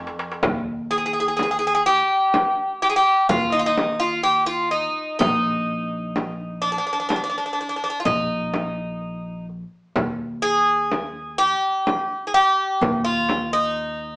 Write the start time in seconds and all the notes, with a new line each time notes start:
Already playing: F2 F4
0.07 darbuka ka
0.19 darbuka tek
0.32 darbuka ka
0.43 D#2, frame drum, darbuka dum
0.91 G#4
0.98 G#4
1.06 G#4
1.13 G#4
1.20 G#4
1.28 G#4
1.37 G#4, darbuka tek, frame drum
1.43 G#4
1.51 G#4
1.59 G#4
1.67 G#4
1.75 G#4
1.86 G4
2.34 darbuka tek, frame drum
2.82 G4, darbuka ka
2.90 G#4
2.96 G4
3.29 D#2 F4, frame drum, darbuka dum
3.52 D#4
3.59 F4
3.66 D#4
3.78 darbuka tek, frame drum
4.00 F4
4.23 G4
4.46 F4
4.71 D#4, darbuka ka
5.19 A#1 D#4, frame drum, darbuka dum
6.16 darbuka tek, frame drum
6.62 D4
6.72 D4
6.78 D4
6.87 D4
6.93 D4
7.00 D4
7.09 D4, darbuka tek, frame drum
7.16 D4
7.24 D4
7.30 D4
7.38 D4
7.46 D4
7.53 D4
7.58 D4, darbuka ka
7.69 D4
7.76 D4
7.84 D4
7.90 D4
8.00 F4
8.05 A#1 D#4, darbuka dum, frame drum
8.54 darbuka tek, frame drum
9.02 darbuka ka
9.49 darbuka ka
9.96 D#2, frame drum, darbuka dum
10.42 G#4
10.92 darbuka tek, frame drum
11.38 G4
11.87 darbuka tek, frame drum
12.27 G#4
12.34 G4, darbuka ka
12.81 D#2, darbuka dum, frame drum
13.05 F4
13.29 darbuka tek, frame drum
13.53 D#4
13.77 darbuka ka